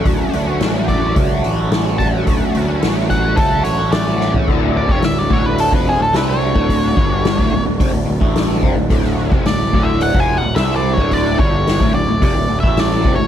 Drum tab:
CC |----------------|----------------|x---------------|----------------|
HH |o-o-o-o-o-o-o-o-|o-o-o-o-o-o-o---|----o---o---o---|o---o---o---o---|
SD |----o-------o---|----o-------o-o-|----o-------o---|----o-------o---|
FT |----------------|---------------o|----------------|----------------|
BD |o-----o-o-----o-|o-----o-o-------|o--o--o--o-----o|o-o--o--o--o--o-|

CC |----------------|----------------|
HH |o---o---o---o---|o---o---o---o---|
SD |-o--o-------o---|----o-------o---|
FT |----------------|----------------|
BD |o--o--o--o-----o|o-o--o--o--o--o-|